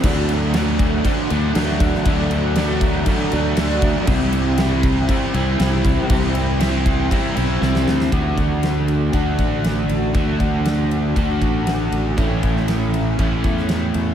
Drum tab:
CC |x-x-x-x-x-x-x-x-|x-x-x-x-x-x-x-x-|x-x-x-x-x-x-x-x-|x-x-x-x-x-x-----|
RD |----------------|----------------|----------------|----------------|
SD |----o-------o--o|----o-------o---|----o-------o---|----o-------oooo|
BD |o-----o-o-----o-|o-----o-o-----o-|o-----o-o-----o-|o-----o-o-------|

CC |----------------|----------------|----------------|
RD |x-x-x-x-x-x-x-x-|x-x-x-x-x-x-x-x-|x-x-x-x-x-x-x-x-|
SD |----o-------o---|----o-------o---|---oo------oo---|
BD |o-o-----o-o-----|o-o-----o-o-----|o-o-----o-o-----|